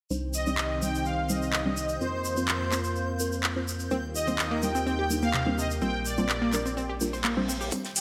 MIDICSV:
0, 0, Header, 1, 9, 480
1, 0, Start_track
1, 0, Key_signature, -3, "minor"
1, 0, Tempo, 476190
1, 105, Time_signature, 4, 2, 24, 8
1, 8071, End_track
2, 0, Start_track
2, 0, Title_t, "Synth texture"
2, 0, Program_c, 0, 99
2, 105, Note_on_c, 0, 91, 82
2, 7795, Note_off_c, 0, 91, 0
2, 8071, End_track
3, 0, Start_track
3, 0, Title_t, "Supersaw synth"
3, 0, Program_c, 1, 81
3, 346, Note_on_c, 1, 75, 105
3, 824, Note_on_c, 1, 79, 106
3, 840, Note_off_c, 1, 75, 0
3, 1064, Note_on_c, 1, 77, 105
3, 1072, Note_off_c, 1, 79, 0
3, 1304, Note_on_c, 1, 75, 106
3, 1312, Note_off_c, 1, 77, 0
3, 2024, Note_on_c, 1, 72, 99
3, 2046, Note_off_c, 1, 75, 0
3, 2492, Note_off_c, 1, 72, 0
3, 2504, Note_on_c, 1, 72, 85
3, 3424, Note_off_c, 1, 72, 0
3, 4185, Note_on_c, 1, 75, 104
3, 4664, Note_on_c, 1, 79, 117
3, 4679, Note_off_c, 1, 75, 0
3, 5269, Note_on_c, 1, 77, 104
3, 5287, Note_off_c, 1, 79, 0
3, 5599, Note_off_c, 1, 77, 0
3, 5625, Note_on_c, 1, 75, 89
3, 5733, Note_off_c, 1, 75, 0
3, 5865, Note_on_c, 1, 79, 111
3, 6107, Note_on_c, 1, 74, 85
3, 6112, Note_off_c, 1, 79, 0
3, 7025, Note_off_c, 1, 74, 0
3, 8025, Note_on_c, 1, 79, 102
3, 8071, Note_off_c, 1, 79, 0
3, 8071, End_track
4, 0, Start_track
4, 0, Title_t, "Synth stab"
4, 0, Program_c, 2, 62
4, 105, Note_on_c, 2, 55, 78
4, 105, Note_on_c, 2, 60, 74
4, 105, Note_on_c, 2, 62, 70
4, 105, Note_on_c, 2, 63, 75
4, 105, Note_on_c, 2, 72, 90
4, 440, Note_off_c, 2, 55, 0
4, 440, Note_off_c, 2, 60, 0
4, 440, Note_off_c, 2, 62, 0
4, 440, Note_off_c, 2, 63, 0
4, 440, Note_off_c, 2, 72, 0
4, 470, Note_on_c, 2, 55, 93
4, 470, Note_on_c, 2, 60, 85
4, 470, Note_on_c, 2, 62, 88
4, 470, Note_on_c, 2, 63, 87
4, 470, Note_on_c, 2, 74, 107
4, 536, Note_off_c, 2, 55, 0
4, 536, Note_off_c, 2, 60, 0
4, 536, Note_off_c, 2, 62, 0
4, 536, Note_off_c, 2, 63, 0
4, 536, Note_off_c, 2, 74, 0
4, 825, Note_on_c, 2, 62, 76
4, 825, Note_on_c, 2, 72, 94
4, 826, Note_on_c, 2, 55, 84
4, 826, Note_on_c, 2, 60, 75
4, 826, Note_on_c, 2, 63, 80
4, 897, Note_off_c, 2, 55, 0
4, 897, Note_off_c, 2, 60, 0
4, 897, Note_off_c, 2, 62, 0
4, 897, Note_off_c, 2, 63, 0
4, 897, Note_off_c, 2, 72, 0
4, 1305, Note_on_c, 2, 55, 84
4, 1305, Note_on_c, 2, 60, 76
4, 1305, Note_on_c, 2, 63, 78
4, 1305, Note_on_c, 2, 72, 93
4, 1639, Note_off_c, 2, 63, 0
4, 1640, Note_off_c, 2, 55, 0
4, 1640, Note_off_c, 2, 60, 0
4, 1640, Note_off_c, 2, 72, 0
4, 1669, Note_on_c, 2, 63, 83
4, 1670, Note_on_c, 2, 55, 89
4, 1670, Note_on_c, 2, 60, 85
4, 1670, Note_on_c, 2, 62, 88
4, 1670, Note_on_c, 2, 74, 101
4, 1775, Note_off_c, 2, 55, 0
4, 1775, Note_off_c, 2, 60, 0
4, 1775, Note_off_c, 2, 62, 0
4, 1775, Note_off_c, 2, 63, 0
4, 1775, Note_off_c, 2, 74, 0
4, 2024, Note_on_c, 2, 60, 80
4, 2024, Note_on_c, 2, 65, 73
4, 2024, Note_on_c, 2, 70, 89
4, 2359, Note_off_c, 2, 60, 0
4, 2359, Note_off_c, 2, 65, 0
4, 2359, Note_off_c, 2, 70, 0
4, 2389, Note_on_c, 2, 60, 97
4, 2389, Note_on_c, 2, 65, 90
4, 2389, Note_on_c, 2, 72, 107
4, 2455, Note_off_c, 2, 60, 0
4, 2455, Note_off_c, 2, 65, 0
4, 2455, Note_off_c, 2, 72, 0
4, 2744, Note_on_c, 2, 60, 84
4, 2744, Note_on_c, 2, 65, 79
4, 2744, Note_on_c, 2, 70, 93
4, 2816, Note_off_c, 2, 60, 0
4, 2816, Note_off_c, 2, 65, 0
4, 2816, Note_off_c, 2, 70, 0
4, 3224, Note_on_c, 2, 60, 87
4, 3225, Note_on_c, 2, 65, 77
4, 3225, Note_on_c, 2, 70, 93
4, 3559, Note_off_c, 2, 60, 0
4, 3559, Note_off_c, 2, 65, 0
4, 3559, Note_off_c, 2, 70, 0
4, 3589, Note_on_c, 2, 60, 90
4, 3589, Note_on_c, 2, 65, 82
4, 3589, Note_on_c, 2, 72, 101
4, 3695, Note_off_c, 2, 60, 0
4, 3695, Note_off_c, 2, 65, 0
4, 3695, Note_off_c, 2, 72, 0
4, 3944, Note_on_c, 2, 58, 73
4, 3944, Note_on_c, 2, 62, 75
4, 3944, Note_on_c, 2, 63, 74
4, 3944, Note_on_c, 2, 70, 84
4, 3945, Note_on_c, 2, 55, 80
4, 4279, Note_off_c, 2, 55, 0
4, 4279, Note_off_c, 2, 58, 0
4, 4279, Note_off_c, 2, 62, 0
4, 4279, Note_off_c, 2, 63, 0
4, 4279, Note_off_c, 2, 70, 0
4, 4308, Note_on_c, 2, 55, 97
4, 4308, Note_on_c, 2, 58, 84
4, 4308, Note_on_c, 2, 62, 85
4, 4308, Note_on_c, 2, 63, 90
4, 4308, Note_on_c, 2, 72, 106
4, 4375, Note_off_c, 2, 55, 0
4, 4375, Note_off_c, 2, 58, 0
4, 4375, Note_off_c, 2, 62, 0
4, 4375, Note_off_c, 2, 63, 0
4, 4375, Note_off_c, 2, 72, 0
4, 4663, Note_on_c, 2, 55, 85
4, 4663, Note_on_c, 2, 58, 78
4, 4663, Note_on_c, 2, 62, 78
4, 4663, Note_on_c, 2, 63, 80
4, 4663, Note_on_c, 2, 70, 94
4, 4735, Note_off_c, 2, 55, 0
4, 4735, Note_off_c, 2, 58, 0
4, 4736, Note_off_c, 2, 62, 0
4, 4736, Note_off_c, 2, 63, 0
4, 4736, Note_off_c, 2, 70, 0
4, 5144, Note_on_c, 2, 55, 87
4, 5144, Note_on_c, 2, 58, 75
4, 5144, Note_on_c, 2, 62, 79
4, 5144, Note_on_c, 2, 63, 78
4, 5144, Note_on_c, 2, 70, 95
4, 5479, Note_off_c, 2, 55, 0
4, 5479, Note_off_c, 2, 58, 0
4, 5479, Note_off_c, 2, 62, 0
4, 5479, Note_off_c, 2, 63, 0
4, 5479, Note_off_c, 2, 70, 0
4, 5509, Note_on_c, 2, 55, 96
4, 5509, Note_on_c, 2, 58, 85
4, 5509, Note_on_c, 2, 62, 87
4, 5509, Note_on_c, 2, 63, 86
4, 5509, Note_on_c, 2, 72, 101
4, 5615, Note_off_c, 2, 55, 0
4, 5615, Note_off_c, 2, 58, 0
4, 5615, Note_off_c, 2, 62, 0
4, 5615, Note_off_c, 2, 63, 0
4, 5615, Note_off_c, 2, 72, 0
4, 5864, Note_on_c, 2, 55, 82
4, 5864, Note_on_c, 2, 58, 75
4, 5864, Note_on_c, 2, 62, 71
4, 5864, Note_on_c, 2, 65, 73
4, 5864, Note_on_c, 2, 70, 87
4, 6199, Note_off_c, 2, 55, 0
4, 6199, Note_off_c, 2, 58, 0
4, 6199, Note_off_c, 2, 62, 0
4, 6199, Note_off_c, 2, 65, 0
4, 6199, Note_off_c, 2, 70, 0
4, 6230, Note_on_c, 2, 55, 96
4, 6230, Note_on_c, 2, 58, 86
4, 6230, Note_on_c, 2, 62, 84
4, 6230, Note_on_c, 2, 65, 88
4, 6230, Note_on_c, 2, 72, 106
4, 6296, Note_off_c, 2, 55, 0
4, 6296, Note_off_c, 2, 58, 0
4, 6296, Note_off_c, 2, 62, 0
4, 6296, Note_off_c, 2, 65, 0
4, 6296, Note_off_c, 2, 72, 0
4, 6584, Note_on_c, 2, 55, 83
4, 6584, Note_on_c, 2, 65, 79
4, 6585, Note_on_c, 2, 58, 78
4, 6585, Note_on_c, 2, 62, 79
4, 6585, Note_on_c, 2, 70, 98
4, 6656, Note_off_c, 2, 55, 0
4, 6656, Note_off_c, 2, 58, 0
4, 6656, Note_off_c, 2, 62, 0
4, 6656, Note_off_c, 2, 65, 0
4, 6656, Note_off_c, 2, 70, 0
4, 7065, Note_on_c, 2, 55, 85
4, 7065, Note_on_c, 2, 58, 76
4, 7065, Note_on_c, 2, 62, 80
4, 7065, Note_on_c, 2, 65, 77
4, 7065, Note_on_c, 2, 70, 96
4, 7399, Note_off_c, 2, 62, 0
4, 7400, Note_off_c, 2, 55, 0
4, 7400, Note_off_c, 2, 58, 0
4, 7400, Note_off_c, 2, 65, 0
4, 7400, Note_off_c, 2, 70, 0
4, 7429, Note_on_c, 2, 55, 91
4, 7429, Note_on_c, 2, 58, 82
4, 7429, Note_on_c, 2, 62, 88
4, 7429, Note_on_c, 2, 65, 87
4, 7429, Note_on_c, 2, 72, 105
4, 7535, Note_off_c, 2, 55, 0
4, 7535, Note_off_c, 2, 58, 0
4, 7535, Note_off_c, 2, 62, 0
4, 7535, Note_off_c, 2, 65, 0
4, 7535, Note_off_c, 2, 72, 0
4, 7785, Note_on_c, 2, 55, 83
4, 7785, Note_on_c, 2, 60, 76
4, 7785, Note_on_c, 2, 62, 73
4, 7785, Note_on_c, 2, 63, 73
4, 7785, Note_on_c, 2, 72, 89
4, 8071, Note_off_c, 2, 55, 0
4, 8071, Note_off_c, 2, 60, 0
4, 8071, Note_off_c, 2, 62, 0
4, 8071, Note_off_c, 2, 63, 0
4, 8071, Note_off_c, 2, 72, 0
4, 8071, End_track
5, 0, Start_track
5, 0, Title_t, "Synth pluck"
5, 0, Program_c, 3, 84
5, 3944, Note_on_c, 3, 60, 98
5, 4015, Note_off_c, 3, 60, 0
5, 4308, Note_on_c, 3, 60, 77
5, 4407, Note_off_c, 3, 60, 0
5, 4549, Note_on_c, 3, 58, 99
5, 4647, Note_off_c, 3, 58, 0
5, 4788, Note_on_c, 3, 60, 75
5, 4886, Note_off_c, 3, 60, 0
5, 4903, Note_on_c, 3, 60, 99
5, 4974, Note_off_c, 3, 60, 0
5, 5028, Note_on_c, 3, 67, 72
5, 5094, Note_off_c, 3, 67, 0
5, 5268, Note_on_c, 3, 58, 73
5, 5367, Note_off_c, 3, 58, 0
5, 5384, Note_on_c, 3, 48, 84
5, 5490, Note_off_c, 3, 48, 0
5, 5508, Note_on_c, 3, 60, 74
5, 5548, Note_off_c, 3, 60, 0
5, 5624, Note_on_c, 3, 48, 77
5, 5730, Note_off_c, 3, 48, 0
5, 5864, Note_on_c, 3, 60, 103
5, 5935, Note_off_c, 3, 60, 0
5, 6229, Note_on_c, 3, 60, 76
5, 6327, Note_off_c, 3, 60, 0
5, 6469, Note_on_c, 3, 58, 104
5, 6567, Note_off_c, 3, 58, 0
5, 6709, Note_on_c, 3, 60, 76
5, 6807, Note_off_c, 3, 60, 0
5, 6825, Note_on_c, 3, 60, 95
5, 6895, Note_off_c, 3, 60, 0
5, 6949, Note_on_c, 3, 67, 70
5, 7015, Note_off_c, 3, 67, 0
5, 7189, Note_on_c, 3, 72, 75
5, 7228, Note_off_c, 3, 72, 0
5, 7304, Note_on_c, 3, 58, 102
5, 7375, Note_off_c, 3, 58, 0
5, 7428, Note_on_c, 3, 60, 77
5, 7527, Note_off_c, 3, 60, 0
5, 7543, Note_on_c, 3, 60, 76
5, 7615, Note_off_c, 3, 60, 0
5, 7668, Note_on_c, 3, 67, 79
5, 7734, Note_off_c, 3, 67, 0
5, 7783, Note_on_c, 3, 60, 103
5, 7855, Note_off_c, 3, 60, 0
5, 8071, End_track
6, 0, Start_track
6, 0, Title_t, "Analog synth pad"
6, 0, Program_c, 4, 89
6, 105, Note_on_c, 4, 48, 78
6, 105, Note_on_c, 4, 51, 74
6, 105, Note_on_c, 4, 60, 70
6, 105, Note_on_c, 4, 72, 71
6, 106, Note_on_c, 4, 67, 83
6, 2005, Note_off_c, 4, 51, 0
6, 2006, Note_off_c, 4, 48, 0
6, 2006, Note_off_c, 4, 67, 0
6, 2006, Note_off_c, 4, 72, 0
6, 2024, Note_on_c, 4, 58, 82
6, 2024, Note_on_c, 4, 65, 88
6, 3907, Note_off_c, 4, 60, 0
6, 3925, Note_off_c, 4, 58, 0
6, 3925, Note_off_c, 4, 65, 0
6, 3944, Note_on_c, 4, 65, 74
6, 3945, Note_on_c, 4, 51, 82
6, 3945, Note_on_c, 4, 58, 72
6, 3945, Note_on_c, 4, 67, 89
6, 5845, Note_off_c, 4, 51, 0
6, 5845, Note_off_c, 4, 65, 0
6, 7746, Note_off_c, 4, 58, 0
6, 7746, Note_off_c, 4, 67, 0
6, 7784, Note_on_c, 4, 74, 87
6, 7785, Note_on_c, 4, 36, 81
6, 7785, Note_on_c, 4, 48, 72
6, 7785, Note_on_c, 4, 51, 75
6, 7785, Note_on_c, 4, 67, 74
6, 8071, Note_off_c, 4, 36, 0
6, 8071, Note_off_c, 4, 48, 0
6, 8071, Note_off_c, 4, 51, 0
6, 8071, Note_off_c, 4, 67, 0
6, 8071, Note_off_c, 4, 74, 0
6, 8071, End_track
7, 0, Start_track
7, 0, Title_t, "Detuned saw bass"
7, 0, Program_c, 5, 39
7, 104, Note_on_c, 5, 36, 89
7, 2001, Note_off_c, 5, 36, 0
7, 2024, Note_on_c, 5, 41, 87
7, 3921, Note_off_c, 5, 41, 0
7, 3945, Note_on_c, 5, 39, 91
7, 5842, Note_off_c, 5, 39, 0
7, 5864, Note_on_c, 5, 34, 89
7, 7761, Note_off_c, 5, 34, 0
7, 8071, End_track
8, 0, Start_track
8, 0, Title_t, "Reverse cymbal"
8, 0, Program_c, 6, 119
8, 6824, Note_on_c, 6, 60, 71
8, 7784, Note_off_c, 6, 60, 0
8, 8071, End_track
9, 0, Start_track
9, 0, Title_t, "Drums"
9, 106, Note_on_c, 9, 82, 40
9, 207, Note_off_c, 9, 82, 0
9, 340, Note_on_c, 9, 82, 84
9, 441, Note_off_c, 9, 82, 0
9, 470, Note_on_c, 9, 82, 47
9, 571, Note_off_c, 9, 82, 0
9, 582, Note_on_c, 9, 39, 118
9, 589, Note_on_c, 9, 82, 34
9, 683, Note_off_c, 9, 39, 0
9, 690, Note_off_c, 9, 82, 0
9, 829, Note_on_c, 9, 82, 88
9, 929, Note_off_c, 9, 82, 0
9, 956, Note_on_c, 9, 82, 48
9, 1057, Note_off_c, 9, 82, 0
9, 1061, Note_on_c, 9, 82, 36
9, 1162, Note_off_c, 9, 82, 0
9, 1303, Note_on_c, 9, 82, 92
9, 1404, Note_off_c, 9, 82, 0
9, 1433, Note_on_c, 9, 82, 46
9, 1534, Note_off_c, 9, 82, 0
9, 1542, Note_on_c, 9, 39, 118
9, 1551, Note_on_c, 9, 82, 32
9, 1643, Note_off_c, 9, 39, 0
9, 1652, Note_off_c, 9, 82, 0
9, 1782, Note_on_c, 9, 82, 81
9, 1883, Note_off_c, 9, 82, 0
9, 1903, Note_on_c, 9, 82, 49
9, 2004, Note_off_c, 9, 82, 0
9, 2025, Note_on_c, 9, 82, 36
9, 2126, Note_off_c, 9, 82, 0
9, 2263, Note_on_c, 9, 82, 93
9, 2364, Note_off_c, 9, 82, 0
9, 2385, Note_on_c, 9, 82, 53
9, 2485, Note_off_c, 9, 82, 0
9, 2496, Note_on_c, 9, 82, 36
9, 2502, Note_on_c, 9, 39, 116
9, 2597, Note_off_c, 9, 82, 0
9, 2603, Note_off_c, 9, 39, 0
9, 2742, Note_on_c, 9, 39, 60
9, 2743, Note_on_c, 9, 82, 81
9, 2843, Note_off_c, 9, 39, 0
9, 2844, Note_off_c, 9, 82, 0
9, 2863, Note_on_c, 9, 82, 52
9, 2964, Note_off_c, 9, 82, 0
9, 2981, Note_on_c, 9, 82, 34
9, 3082, Note_off_c, 9, 82, 0
9, 3221, Note_on_c, 9, 82, 98
9, 3321, Note_off_c, 9, 82, 0
9, 3348, Note_on_c, 9, 82, 52
9, 3449, Note_off_c, 9, 82, 0
9, 3461, Note_on_c, 9, 82, 37
9, 3462, Note_on_c, 9, 39, 124
9, 3562, Note_off_c, 9, 39, 0
9, 3562, Note_off_c, 9, 82, 0
9, 3709, Note_on_c, 9, 82, 90
9, 3810, Note_off_c, 9, 82, 0
9, 3824, Note_on_c, 9, 82, 45
9, 3925, Note_off_c, 9, 82, 0
9, 3940, Note_on_c, 9, 82, 42
9, 4040, Note_off_c, 9, 82, 0
9, 4186, Note_on_c, 9, 82, 92
9, 4287, Note_off_c, 9, 82, 0
9, 4307, Note_on_c, 9, 82, 51
9, 4408, Note_off_c, 9, 82, 0
9, 4422, Note_on_c, 9, 39, 116
9, 4427, Note_on_c, 9, 82, 39
9, 4522, Note_off_c, 9, 39, 0
9, 4527, Note_off_c, 9, 82, 0
9, 4661, Note_on_c, 9, 82, 78
9, 4762, Note_off_c, 9, 82, 0
9, 4790, Note_on_c, 9, 82, 54
9, 4891, Note_off_c, 9, 82, 0
9, 4909, Note_on_c, 9, 82, 34
9, 5010, Note_off_c, 9, 82, 0
9, 5145, Note_on_c, 9, 82, 96
9, 5246, Note_off_c, 9, 82, 0
9, 5264, Note_on_c, 9, 82, 49
9, 5365, Note_off_c, 9, 82, 0
9, 5378, Note_on_c, 9, 82, 40
9, 5382, Note_on_c, 9, 39, 118
9, 5478, Note_off_c, 9, 82, 0
9, 5483, Note_off_c, 9, 39, 0
9, 5630, Note_on_c, 9, 82, 91
9, 5731, Note_off_c, 9, 82, 0
9, 5751, Note_on_c, 9, 82, 57
9, 5852, Note_off_c, 9, 82, 0
9, 5861, Note_on_c, 9, 82, 39
9, 5961, Note_off_c, 9, 82, 0
9, 6102, Note_on_c, 9, 82, 97
9, 6203, Note_off_c, 9, 82, 0
9, 6226, Note_on_c, 9, 82, 54
9, 6327, Note_off_c, 9, 82, 0
9, 6340, Note_on_c, 9, 82, 40
9, 6342, Note_on_c, 9, 39, 110
9, 6441, Note_off_c, 9, 82, 0
9, 6443, Note_off_c, 9, 39, 0
9, 6582, Note_on_c, 9, 39, 57
9, 6582, Note_on_c, 9, 82, 89
9, 6682, Note_off_c, 9, 39, 0
9, 6683, Note_off_c, 9, 82, 0
9, 6713, Note_on_c, 9, 82, 54
9, 6813, Note_off_c, 9, 82, 0
9, 6826, Note_on_c, 9, 82, 36
9, 6927, Note_off_c, 9, 82, 0
9, 7062, Note_on_c, 9, 82, 103
9, 7163, Note_off_c, 9, 82, 0
9, 7192, Note_on_c, 9, 82, 47
9, 7293, Note_off_c, 9, 82, 0
9, 7296, Note_on_c, 9, 82, 38
9, 7302, Note_on_c, 9, 39, 116
9, 7396, Note_off_c, 9, 82, 0
9, 7403, Note_off_c, 9, 39, 0
9, 7550, Note_on_c, 9, 82, 94
9, 7651, Note_off_c, 9, 82, 0
9, 7671, Note_on_c, 9, 82, 51
9, 7772, Note_off_c, 9, 82, 0
9, 7780, Note_on_c, 9, 54, 78
9, 7783, Note_on_c, 9, 42, 51
9, 7783, Note_on_c, 9, 82, 39
9, 7784, Note_on_c, 9, 36, 107
9, 7881, Note_off_c, 9, 54, 0
9, 7883, Note_off_c, 9, 82, 0
9, 7884, Note_off_c, 9, 42, 0
9, 7885, Note_off_c, 9, 36, 0
9, 7908, Note_on_c, 9, 38, 41
9, 7908, Note_on_c, 9, 42, 26
9, 8008, Note_off_c, 9, 38, 0
9, 8009, Note_off_c, 9, 42, 0
9, 8019, Note_on_c, 9, 82, 84
9, 8023, Note_on_c, 9, 46, 100
9, 8025, Note_on_c, 9, 38, 38
9, 8032, Note_on_c, 9, 54, 71
9, 8071, Note_off_c, 9, 38, 0
9, 8071, Note_off_c, 9, 46, 0
9, 8071, Note_off_c, 9, 54, 0
9, 8071, Note_off_c, 9, 82, 0
9, 8071, End_track
0, 0, End_of_file